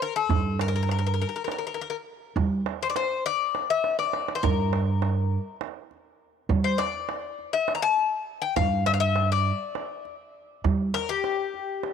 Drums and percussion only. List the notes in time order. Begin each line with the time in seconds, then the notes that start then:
0.30 darbuka dum
0.59 darbuka tek
0.74 darbuka ka
0.89 darbuka tek
1.18 darbuka ka
1.48 darbuka tek
1.77 darbuka ka
2.37 darbuka dum
2.66 darbuka tek
2.81 darbuka ka
2.96 darbuka tek
3.26 darbuka ka
3.55 darbuka tek
3.84 darbuka tek
3.99 darbuka ka
4.13 darbuka tek
4.28 darbuka ka
4.44 darbuka dum
4.73 darbuka tek
4.87 darbuka ka
5.02 darbuka tek
5.32 darbuka ka
5.61 darbuka tek
5.91 darbuka ka
6.50 darbuka dum
6.79 darbuka tek
6.94 darbuka ka
7.09 darbuka tek
7.39 darbuka ka
7.68 darbuka tek
7.98 darbuka ka
8.56 darbuka dum
8.86 darbuka tek
9.01 darbuka ka
9.16 darbuka tek
9.46 darbuka ka
9.75 darbuka tek
10.05 darbuka ka
10.65 darbuka dum
10.94 darbuka tek
11.09 darbuka ka
11.24 darbuka tek
11.54 darbuka ka
11.83 darbuka tek